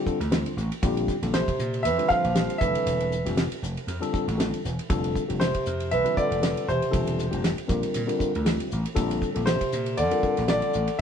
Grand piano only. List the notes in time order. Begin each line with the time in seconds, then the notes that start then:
1.34 C5
1.83 E5
2.09 F5
2.58 E5
5.40 C5
5.91 E5
6.17 D5
6.69 C5
9.46 C5
9.97 D5
10.50 D5